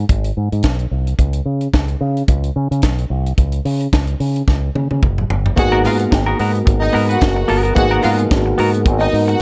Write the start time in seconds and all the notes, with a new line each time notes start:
0.09 G#1, kick, closed hi-hat
0.24 closed hi-hat
0.37 G#2
0.52 G#2, closed hi-hat
0.63 B1, kick, snare, closed hi-hat
0.79 closed hi-hat
0.91 C2
1.07 closed hi-hat
1.19 C#2, kick, closed hi-hat
1.33 closed hi-hat
1.46 C#3
1.61 closed hi-hat
1.73 C#2, kick, snare, closed hi-hat
1.88 closed hi-hat
2.01 C#3
2.17 closed hi-hat
2.28 C#2, kick, closed hi-hat
2.44 closed hi-hat
2.56 C#3
2.71 C#3, closed hi-hat
2.82 B1, kick, snare, closed hi-hat
2.98 closed hi-hat
3.10 C2
3.26 closed hi-hat
3.38 C#2, kick, closed hi-hat
3.52 closed hi-hat
3.65 C#3, open hi-hat
3.80 closed hi-hat
3.93 C#2, kick, snare, closed hi-hat
4.07 closed hi-hat
4.20 C#3, open hi-hat
4.36 closed hi-hat
4.48 C#2, kick, snare
4.75 C#3, high tom
4.91 C#3, high tom
5.03 F#1, kick, mid tom
5.18 mid tom
5.30 G1, floor tom
5.46 floor tom
5.56 G#1 B2 G#3 A#3 B3 D#4 F#4 G#4 A#4 F#5, muted clean electric guitar stroke, kick, closed hi-hat
5.72 B3 F#4 A#4
5.84 G#2 B3 F4 F#4 A#4 F5, open hi-hat
5.99 muted clean electric guitar stroke, closed hi-hat
6.11 G#1, muted clean electric guitar stroke, kick, snare, closed hi-hat
6.26 B3 F#4 A#4
6.39 G#2 B3 F#4 A#4, open hi-hat
6.54 muted clean electric guitar stroke, closed hi-hat
6.66 G#1, muted clean electric guitar stroke, kick, closed hi-hat
6.82 D#4 D#5, muted clean electric guitar stroke
6.93 G#2 B3 F#4 A#4, open hi-hat
7.09 B3 F#4 B4 F#5, closed hi-hat
7.21 F#1, kick, snare, closed hi-hat
7.36 muted clean electric guitar stroke
7.48 G1 B3 F#4 A#4, open hi-hat
7.63 B3 F#4 A#4, closed hi-hat
7.75 G#1 A#3 B3 D#4 F#4 G#4 F#5, muted clean electric guitar stroke, kick, closed hi-hat
7.91 B3 F#4 A#4
8.03 G#2 B3 F4 F#4 A#4 F5, open hi-hat
8.18 muted clean electric guitar stroke, closed hi-hat
8.31 G#1, kick, snare, closed hi-hat
8.46 muted clean electric guitar stroke
8.58 G#2 B3 F#4 A#4, open hi-hat
8.73 muted clean electric guitar stroke, closed hi-hat
8.85 G#1, muted clean electric guitar stroke, kick, closed hi-hat
9.00 D#4 D#5, muted clean electric guitar stroke
9.13 G#2, open hi-hat
9.27 F#4 F#5, muted clean electric guitar stroke, closed hi-hat